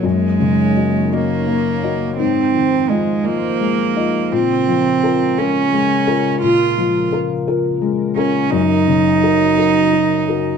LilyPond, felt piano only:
\new Staff \with { instrumentName = "Felt piano" } { \time 6/8 \key bes \minor \tempo 4. = 57 ges,8 des8 <ges' ees''>8 <ges' ees''>8 bes8 <ges' ees''>8 | aes,8 ees8 <f' ees''>8 <f' ees''>8 aes8 <f' ees''>8 | bes,8 f8 <f' bes'>8 <f' bes'>8 aes8 <f' bes'>8 | bes,8 f8 <f' bes'>8 <f' bes'>8 aes8 <f' bes'>8 |
ges,8 des8 <ges' bes'>8 <ges' bes'>8 ges8 <ges' bes'>8 | }